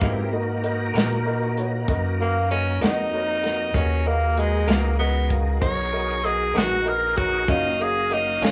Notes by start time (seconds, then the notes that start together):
Already playing: A#3
0.01 G#2 G#3 B3 C4 E4 F#4 G4 A#4 B4 D#5, kick, closed hi-hat
0.32 A#3 D#4 F#4 A#4 B4 D#5
0.63 F#4 A#4 B4 D#5, closed hi-hat
0.94 A#2 G#3 B3 F#4 A#4 B4 D#5, closed hi-hat
0.98 snare
1.25 F#4 A#4 B4 D#5
1.57 F#4 A#4 B4 C#5, closed hi-hat
1.88 F#2 F#4 A#4 B4 D#5, kick, closed hi-hat
2.19 A#3 F#4 A#4 B4 F5
2.51 C#4 F#4 A#4 B4 D#5, closed hi-hat
2.81 F2 G#3 B3 D#4 F#4 A#4 B4 D#5, snare, closed hi-hat
3.13 F#4 A#4 B4 C#5
3.43 F#4 A#4 B4 F#5, snare, closed hi-hat
3.74 D#2 C#4 D#4 F#4 G#4 A#4 B4 D#5, kick, closed hi-hat
4.05 A#3 F#4 A#4 B4 D#5
4.37 G#3 F#4 A#4 B4 D#5, closed hi-hat
4.67 C#2 G#3 A#3 B3 F#4 A#4 B4 F5, snare, closed hi-hat
4.99 B3 F#4 A#4 B4 D#5
5.30 F#4 A#4 B4 F5, kick, closed hi-hat
5.60 B1 F#4 A#4 B4 C#5 D#5, kick, closed hi-hat
5.93 F#4 A#4 B4 D#5
6.23 F#4 G#4 A#4 B4 D#5, closed hi-hat
6.54 A#1 G#3 B3 F#4 A#4 B4 D#5, closed hi-hat
6.58 snare
6.85 F#4 A#4 B4 D#5
7.15 F#4 A#4 B4 C#5, kick, closed hi-hat
7.48 F#1 D#3 F#3 A#3 C#4 D#4 F4 F#4 A#4 C#5 F5, kick, closed hi-hat
7.79 F#4 G#4 A#4 C#5 F5
8.09 D#4 F#4 A#4 C#5 D#5, closed hi-hat
8.41 G#1 D#3 F#3 C#4 F4 F#4 A#4 C#5 G#5, snare, closed hi-hat